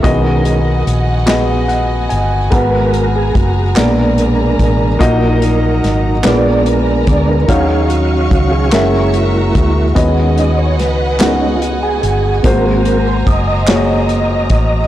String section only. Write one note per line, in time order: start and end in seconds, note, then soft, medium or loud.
0.00 3.73 F#4 soft
0.05 2.51 D#5 medium
0.05 2.51 F#5 medium
0.05 4.97 G#5 medium
2.52 4.98 G#4 medium
2.52 6.21 A#5 medium
3.77 5.00 D5 medium
4.99 6.23 A#4 medium
4.99 6.23 D#5 medium
4.99 6.23 F#5 medium
6.24 7.47 B3 medium
6.24 7.47 D5 medium
6.24 7.47 G#5 medium
6.24 7.47 A#5 medium
7.48 14.87 F#4 medium
7.48 8.71 D#5 medium
7.48 8.72 F5 medium
7.48 9.94 C#6 medium
8.72 9.95 E5 medium
8.72 9.95 A#5 medium
9.96 12.42 D#5 medium
9.96 12.42 F#5 medium
9.96 14.87 G#5 medium
12.44 14.87 C5 medium
12.44 14.87 A#5 medium